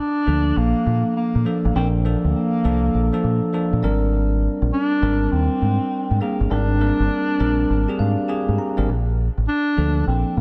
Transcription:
0.00 bass clarinet D4
0.26 fingered electric bass D2, tine electric piano F3 A#3 D4 A4
0.57 fingered electric bass A#1, bass clarinet A#3
0.86 fingered electric bass A#2
1.16 bass clarinet A#3
1.35 fingered electric bass A#2
1.45 tine electric piano F3 A#3 D4 A4
1.65 fingered electric bass A1
1.75 fingered electric bass A#1, tine electric piano F3 A#3 D4 A#4, bass clarinet C4
2.05 tine electric piano F3 A#3 D4 A4, bass clarinet A#3
2.24 fingered electric bass D2
2.64 fingered electric bass C2, tine electric piano F3 A#3 D4 A4
2.94 fingered electric bass A#1
3.13 tine electric piano F3 A#3 D4 A4
3.24 fingered electric bass A#2
3.53 tine electric piano F3 A#3 D4 A4
3.73 fingered electric bass A#2
3.83 fingered electric bass G#1, tine electric piano G3 C4 D4 A#4
4.62 fingered electric bass A#1
4.73 bass clarinet D4
5.02 fingered electric bass G#1, tine electric piano G3 C4 D4 A#4
5.32 fingered electric bass D#2, bass clarinet C4
5.62 fingered electric bass G#2
6.11 fingered electric bass G#2
6.20 tine electric piano G3 C4 D4 G#4, bass clarinet A#3
6.40 fingered electric bass G1
6.50 fingered electric bass G#1, tine electric piano G3 C4 D4 A#4, bass clarinet D4
6.80 tine electric piano G3 A#3 D4 A#4
6.87 tine electric piano C4
7.00 fingered electric bass G1
7.39 fingered electric bass A#1, tine electric piano G3 C4 D4 A#4
7.70 fingered electric bass G#1
7.88 tine electric piano C4 D4 G4 G#4
7.99 fingered electric bass G#2, tine electric piano F5
8.28 tine electric piano C4 D4 G4 G#4 G#5
8.48 fingered electric bass G#2
8.58 tine electric piano A#5
8.77 fingered electric bass G#1, tine electric piano G3 C4 D4 A#4
8.89 fingered electric bass A#1
9.37 fingered electric bass A1
9.48 bass clarinet D4
9.77 fingered electric bass D2, tine electric piano F3 A#3 D4 A4
10.07 fingered electric bass A#1, bass clarinet C4
10.37 fingered electric bass A#2, bass clarinet A#3

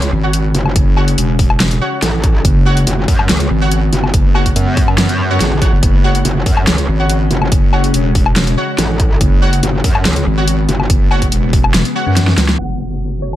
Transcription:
Already playing: wobble bass C#2, ambient pad C#3 G#3 C#4
0.02 closed hi-hat
0.12 wobble bass G#1
0.23 synth stab F#4 C#5 F#5
0.33 closed hi-hat
0.55 wobble bass F#1, closed hi-hat
0.66 low woodblock
0.76 wobble bass F#1, kick, closed hi-hat
0.97 synth stab F#4 C#5 F#5, low woodblock
1.08 closed hi-hat
1.18 wobble bass E1, closed hi-hat
1.39 kick, open hi-hat
1.50 low woodblock
1.60 snare, closed hi-hat
1.71 closed hi-hat
1.81 synth stab F#4 C#5 F#5
2.02 wobble bass A1, snare, closed hi-hat
2.24 kick, closed hi-hat
2.45 wobble bass F#1, ambient pad B3, kick, closed hi-hat
2.66 synth stab F#4 C#5 F#5
2.77 closed hi-hat
2.87 wobble bass F#1, closed hi-hat
3.08 wobble bass F#2, kick, open hi-hat
3.19 low woodblock
3.29 wobble bass C#2, snare, closed hi-hat
3.40 closed hi-hat
3.50 wobble bass G#1
3.61 synth stab F#4 C#5 F#5
3.71 closed hi-hat
3.93 wobble bass F#1, closed hi-hat
4.04 low woodblock
4.14 wobble bass F#1, kick, closed hi-hat
4.35 synth stab F#4 C#5 F#5, low woodblock
4.46 kick, closed hi-hat
4.56 wobble bass F#2, closed hi-hat
4.77 kick, open hi-hat
4.88 low woodblock
4.98 snare, closed hi-hat
5.09 closed hi-hat
5.30 synth stab F#4 C#5 F#5
5.41 wobble bass G#1, snare, closed hi-hat
5.62 synth stab F#4 C#5 F#5, kick, closed hi-hat
5.73 wobble bass F#1
5.83 wobble bass F#1, ambient pad C#4, kick, closed hi-hat
6.04 synth stab F#4 C#5 F#5
6.15 closed hi-hat
6.25 wobble bass F#1, closed hi-hat
6.46 wobble bass F#2, kick, open hi-hat
6.57 low woodblock
6.67 wobble bass C#2, snare, closed hi-hat
6.78 closed hi-hat
6.88 wobble bass G#1
6.99 synth stab F#4 C#5 F#5
7.10 closed hi-hat
7.31 wobble bass F#1, closed hi-hat
7.42 low woodblock
7.52 wobble bass F#1, kick, closed hi-hat
7.73 synth stab F#4 C#5 F#5, low woodblock
7.84 closed hi-hat
7.94 wobble bass E1, closed hi-hat
8.15 kick, open hi-hat
8.26 low woodblock
8.36 snare, closed hi-hat
8.47 closed hi-hat
8.57 synth stab F#4 C#5 F#5
8.78 wobble bass A1, snare, closed hi-hat
9.00 kick, closed hi-hat
9.21 wobble bass F#1, ambient pad B3, kick, closed hi-hat
9.42 synth stab F#4 C#5 F#5
9.53 closed hi-hat
9.63 wobble bass F#1, closed hi-hat
9.84 wobble bass F#2, kick, open hi-hat
9.95 low woodblock
10.05 wobble bass C#2, snare, closed hi-hat
10.16 closed hi-hat
10.26 wobble bass G#1
10.37 synth stab F#4 C#5 F#5
10.48 closed hi-hat
10.69 wobble bass F#1, closed hi-hat
10.80 low woodblock
10.90 wobble bass F#1, kick, closed hi-hat
11.11 synth stab F#4 C#5 F#5, low woodblock
11.22 kick, closed hi-hat
11.32 wobble bass E1, closed hi-hat
11.53 kick, open hi-hat
11.64 low woodblock
11.74 wobble bass E1, snare, closed hi-hat
11.85 closed hi-hat
11.95 synth stab F#4 C#5 F#5
12.06 wobble bass F#2
12.17 snare, closed hi-hat
12.28 snare
12.38 wobble bass C#2, snare, closed hi-hat
12.49 snare
12.59 wobble bass F#1, ambient pad F#3 C#4 F#4 A4, synth pluck F#5, closed hi-hat, impact
12.87 ambient pad B4 A5
12.91 closed hi-hat
13.01 closed hi-hat
13.21 synth pluck C#5, ambient pad E5, closed hi-hat

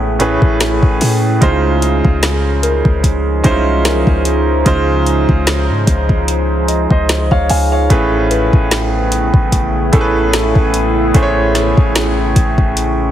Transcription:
Already playing: 808-style bass A1, grand piano A2 A3 C#4 G#4 B4, ambient pad A3 C#4 E4 G#4
0.19 grand piano A2 A3 C#4 G#4 B4, closed hi-hat
0.42 808-style bass A1, kick
0.60 snare, closed hi-hat
0.83 808-style bass A1, kick
1.01 808-style bass A2, open hi-hat
1.41 808-style bass C#2, grand piano C#3 G#3 D#4 F4 C5, ambient pad F3 D#4 C5, kick, closed hi-hat
1.82 closed hi-hat
2.05 808-style bass C#2, kick
2.23 snare, closed hi-hat
2.63 synth bell A#4, closed hi-hat
2.85 808-style bass C#2, kick
3.04 kick, closed hi-hat
3.44 808-style bass C2, grand piano G#3 C#4 D#4 E4 C5, kick, closed hi-hat
3.52 grand piano F4
3.85 synth bell A#4, snare, closed hi-hat
4.07 808-style bass C#2, kick
4.25 closed hi-hat
4.65 808-style bass C#2, grand piano C#3 G#3 D#4 F4 C5, kick, closed hi-hat
5.07 closed hi-hat
5.29 808-style bass C#2, kick
5.47 snare, closed hi-hat
5.69 808-style bass G#2
5.87 808-style bass C#2, kick, closed hi-hat
6.09 kick
6.28 closed hi-hat
6.68 synth bell D#5, closed hi-hat
6.90 808-style bass C#2, grand piano C5 D#5, kick
7.09 snare, closed hi-hat
7.31 808-style bass C#2, grand piano C#5 F5, kick
7.50 808-style bass C#2, grand piano F5 G#5, open hi-hat
7.72 grand piano C#5 F5
7.90 808-style bass A1, grand piano A2 A3 C#4 G#4 B4, ambient pad C#3 A3 B3 E4 G#4, kick, closed hi-hat
8.31 synth bell B4, closed hi-hat
8.53 808-style bass A1, kick
8.71 snare, closed hi-hat
9.12 closed hi-hat
9.34 808-style bass A1, kick
9.52 kick, closed hi-hat
9.92 808-style bass A1, grand piano A2 A3 C#4 G#4 A4, synth bell B5, kick, closed hi-hat
10.01 grand piano B4
10.33 snare, closed hi-hat
10.55 808-style bass A1, kick
10.74 closed hi-hat
11.14 808-style bass A1, grand piano A2 A3 C#4 G#4 C5, ambient pad C#4, kick, closed hi-hat
11.22 grand piano C#5
11.55 synth bell C#6, snare, closed hi-hat
11.77 808-style bass A1, kick
11.96 snare, closed hi-hat
12.36 808-style bass A1, kick, closed hi-hat
12.58 kick
12.77 closed hi-hat

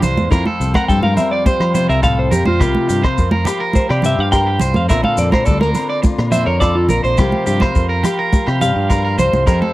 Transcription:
Already playing: nylon-string guitar G2 A#3 G4, transistor combo organ F5 A#5 C6
0.02 fingered electric bass C2, nylon-string guitar E3, clean electric guitar C5, closed hi-hat, low conga, maracas
0.17 fingered electric bass E2, high conga, maracas
0.30 nylon-string guitar F2 E4, fingered electric bass F2, clean electric guitar A#4, transistor combo organ F5 G5, kick, cross-stick, low agogo, maracas
0.46 clean electric guitar A4, high conga
0.60 fingered electric bass C2, nylon-string guitar C4, closed hi-hat, maracas
0.74 clean electric guitar A#4 F#5, kick, cross-stick, high conga, low agogo, maracas
0.88 fingered electric bass G2, nylon-string guitar F3 G3, clean electric guitar A4 G5, kick, maracas
1.03 clean electric guitar A#4 F5, high conga
1.17 nylon-string guitar C4, clean electric guitar E5, closed hi-hat, low conga, low agogo, maracas
1.31 clean electric guitar D5
1.46 nylon-string guitar G4, clean electric guitar C5, kick, high conga, maracas
1.60 fingered electric bass F3, cross-stick, low agogo
1.75 nylon-string guitar C3 C4, clean electric guitar C5, closed hi-hat, low conga, maracas
1.89 fingered electric bass C2, clean electric guitar A#4 E5, maracas
2.03 nylon-string guitar A2, clean electric guitar A4 F5, kick, cross-stick, low agogo, maracas
2.19 clean electric guitar C5
2.31 fingered electric bass F2, nylon-string guitar A#2, clean electric guitar G4 A#4, closed hi-hat, low conga, maracas
2.45 fingered electric bass F2, clean electric guitar F4 C5, high conga
2.60 fingered electric bass C2, nylon-string guitar C3 A#3, clean electric guitar G4, transistor combo organ A#5, kick, cross-stick, low agogo, maracas
2.75 high conga
2.89 fingered electric bass G2, clean electric guitar G4, closed hi-hat, maracas
3.03 clean electric guitar C5, kick, cross-stick, low agogo
3.18 fingered electric bass F2, nylon-string guitar F3 A#3, kick, maracas
3.31 clean electric guitar A#4, high conga
3.45 clean electric guitar G4, nylon-string guitar G4, cross-stick, closed hi-hat, low conga, low agogo, maracas
3.60 clean electric guitar A#4
3.73 nylon-string guitar G4, clean electric guitar C5, kick, high conga, maracas
3.89 fingered electric bass C3, clean electric guitar G4 D5, cross-stick, low agogo
4.02 nylon-string guitar G2 G4, clean electric guitar G4 E5, closed hi-hat, low conga, maracas
4.19 fingered electric bass G2, clean electric guitar F5
4.32 nylon-string guitar G4, clean electric guitar A#4 G5, kick, cross-stick, low agogo, maracas
4.47 clean electric guitar G4
4.60 fingered electric bass C2, clean electric guitar C5, closed hi-hat, low conga, maracas
4.74 fingered electric bass F2, clean electric guitar F5, high conga, maracas
4.89 fingered electric bass A#1, nylon-string guitar A#2 D3 A#3 C4 F4, clean electric guitar A#4 E5, transistor combo organ D5, kick, cross-stick, low agogo, maracas
5.04 clean electric guitar A4 F5, high conga
5.17 fingered electric bass F2, nylon-string guitar C4, clean electric guitar D5, closed hi-hat, maracas
5.32 clean electric guitar A#4 C5, kick, cross-stick, high conga, low agogo
5.46 fingered electric bass D2, nylon-string guitar D3 G3, clean electric guitar A4 D5, kick, maracas
5.61 nylon-string guitar A#3, clean electric guitar A#4, high conga
5.75 nylon-string guitar C4, closed hi-hat, low conga, low agogo, maracas
5.90 clean electric guitar D5
6.03 nylon-string guitar F4, muted clean electric guitar stroke, kick, high conga, maracas
6.18 fingered electric bass A#2, cross-stick, low agogo
6.32 nylon-string guitar F2 C4, clean electric guitar C5 E5, closed hi-hat, low conga, maracas
6.46 fingered electric bass F2, clean electric guitar A#4 C#5
6.60 nylon-string guitar F4, clean electric guitar A4 D5, kick, cross-stick, low agogo, maracas
6.75 clean electric guitar F4
6.89 fingered electric bass A#1, clean electric guitar A#4, closed hi-hat, low conga, maracas
7.04 fingered electric bass A#1, clean electric guitar C5, maracas
7.18 fingered electric bass C2, nylon-string guitar C3 F3 A#3 G4, clean electric guitar G4, transistor combo organ F5 C6, kick, cross-stick, low agogo, maracas
7.32 high conga
7.46 fingered electric bass G2, clean electric guitar G4, nylon-string guitar G4, closed hi-hat, maracas
7.60 clean electric guitar C5, kick, cross-stick, high conga, low agogo
7.75 fingered electric bass F2, nylon-string guitar F3 A#3, kick, maracas
7.89 clean electric guitar A#4
8.03 clean electric guitar G4, nylon-string guitar G4, cross-stick, closed hi-hat, low conga, low agogo, maracas
8.19 clean electric guitar A#4
8.33 nylon-string guitar G4, kick, high conga, maracas
8.47 fingered electric bass C3, clean electric guitar G4, cross-stick, low agogo
8.61 nylon-string guitar G2 G4, clean electric guitar G4 F5, closed hi-hat, low conga, maracas
8.76 fingered electric bass G2
8.90 nylon-string guitar G4, clean electric guitar A#4, kick, cross-stick, low agogo, maracas
9.05 clean electric guitar A#4
9.18 fingered electric bass C2, clean electric guitar C5, closed hi-hat, low conga, maracas
9.33 fingered electric bass C2, high conga, maracas
9.46 nylon-string guitar F2 G4, fingered electric bass F2, clean electric guitar A#4, transistor combo organ F5 G5, kick, cross-stick, low agogo, maracas
9.62 clean electric guitar A4, high conga

